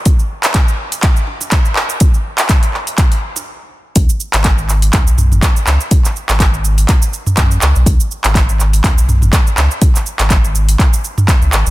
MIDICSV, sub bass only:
0, 0, Header, 1, 2, 480
1, 0, Start_track
1, 0, Tempo, 487805
1, 58, Time_signature, 4, 2, 24, 8
1, 11516, End_track
2, 0, Start_track
2, 0, Title_t, "Sub bass"
2, 0, Program_c, 0, 38
2, 59, Note_on_c, 0, 37, 105
2, 166, Note_off_c, 0, 37, 0
2, 433, Note_on_c, 0, 32, 106
2, 986, Note_off_c, 0, 32, 0
2, 1017, Note_on_c, 0, 37, 84
2, 1125, Note_off_c, 0, 37, 0
2, 1152, Note_on_c, 0, 35, 94
2, 1392, Note_on_c, 0, 32, 101
2, 1407, Note_off_c, 0, 35, 0
2, 1479, Note_off_c, 0, 32, 0
2, 1740, Note_on_c, 0, 37, 106
2, 1846, Note_off_c, 0, 37, 0
2, 2349, Note_on_c, 0, 32, 111
2, 2905, Note_off_c, 0, 32, 0
2, 3896, Note_on_c, 0, 37, 104
2, 4004, Note_off_c, 0, 37, 0
2, 4270, Note_on_c, 0, 32, 105
2, 4825, Note_off_c, 0, 32, 0
2, 4858, Note_on_c, 0, 37, 89
2, 4965, Note_off_c, 0, 37, 0
2, 4993, Note_on_c, 0, 35, 96
2, 5231, Note_on_c, 0, 32, 103
2, 5246, Note_off_c, 0, 35, 0
2, 5318, Note_off_c, 0, 32, 0
2, 5579, Note_on_c, 0, 37, 104
2, 5686, Note_off_c, 0, 37, 0
2, 6193, Note_on_c, 0, 32, 105
2, 6746, Note_off_c, 0, 32, 0
2, 7258, Note_on_c, 0, 42, 82
2, 7457, Note_off_c, 0, 42, 0
2, 7502, Note_on_c, 0, 37, 85
2, 7607, Note_off_c, 0, 37, 0
2, 7635, Note_on_c, 0, 35, 96
2, 7720, Note_off_c, 0, 35, 0
2, 7737, Note_on_c, 0, 37, 103
2, 7845, Note_off_c, 0, 37, 0
2, 8116, Note_on_c, 0, 32, 105
2, 8668, Note_off_c, 0, 32, 0
2, 8700, Note_on_c, 0, 37, 87
2, 8806, Note_off_c, 0, 37, 0
2, 8833, Note_on_c, 0, 35, 97
2, 9074, Note_on_c, 0, 32, 100
2, 9089, Note_off_c, 0, 35, 0
2, 9159, Note_off_c, 0, 32, 0
2, 9422, Note_on_c, 0, 37, 101
2, 9527, Note_off_c, 0, 37, 0
2, 10032, Note_on_c, 0, 32, 108
2, 10586, Note_off_c, 0, 32, 0
2, 11233, Note_on_c, 0, 37, 82
2, 11319, Note_off_c, 0, 37, 0
2, 11341, Note_on_c, 0, 32, 86
2, 11447, Note_off_c, 0, 32, 0
2, 11475, Note_on_c, 0, 32, 87
2, 11516, Note_off_c, 0, 32, 0
2, 11516, End_track
0, 0, End_of_file